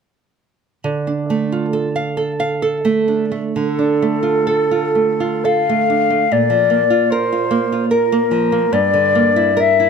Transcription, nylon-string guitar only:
0.84 D3
1.07 D4
1.30 A3
1.52 F4
1.73 A4
1.96 F5
2.17 A4
2.40 F5
2.62 A4
2.85 A3
3.08 D4
3.32 A3
3.56 D3
3.79 D4
4.02 A3
4.23 F4
4.47 A4
4.71 F4
4.95 A3
5.20 F4
5.45 A4
5.69 A3
5.90 D4
6.10 A3
6.32 A#2
6.50 F3
6.70 A#3
6.90 F4
7.12 A#4
7.32 F4
7.51 A#3
7.72 F4
7.91 A#4
8.12 A#3
8.31 F3
8.52 A#3
8.73 G2
8.94 D3
9.15 A#3
9.36 E4
9.57 A#4
9.80 E4

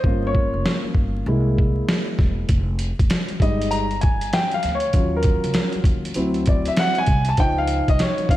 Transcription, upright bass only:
0.04 G1
0.54 F1
0.84 muted upright bass stroke
0.95 G1
1.26 C2
2.19 E1
2.49 F1
2.99 F1
3.30 muted upright bass stroke
3.40 G1
4.64 D2
4.94 D#2
5.44 C#2
5.75 muted upright bass stroke
5.84 D#2
6.16 D2
7.08 C2
7.88 C2
8.19 muted upright bass stroke
8.29 C#2

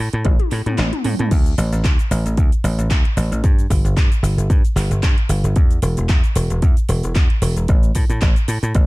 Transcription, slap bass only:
0.00 A2
0.13 A2
0.25 A1
0.52 A2
0.66 A2
0.78 A1
1.05 A2
1.20 A2
1.31 D2
1.58 A1
1.72 A1
2.11 A1
2.25 A1
2.38 D2
2.64 A1
2.78 A1
2.91 D2
3.17 A1
3.32 A1
3.44 G2
3.70 G1
3.84 G1
3.97 G2
4.23 G1
4.37 G1
4.50 G2
4.76 G1
4.90 G1
5.03 G2
5.29 G1
5.44 G1
5.82 E1
5.97 E1
6.09 E2
6.35 E1
6.50 E1
6.63 E2
6.89 E1
7.03 E1
7.16 E2
7.42 E1
7.56 E1
7.69 A1
7.95 A2
8.10 A2
8.22 A1
8.48 A2
8.63 A2
8.75 A1

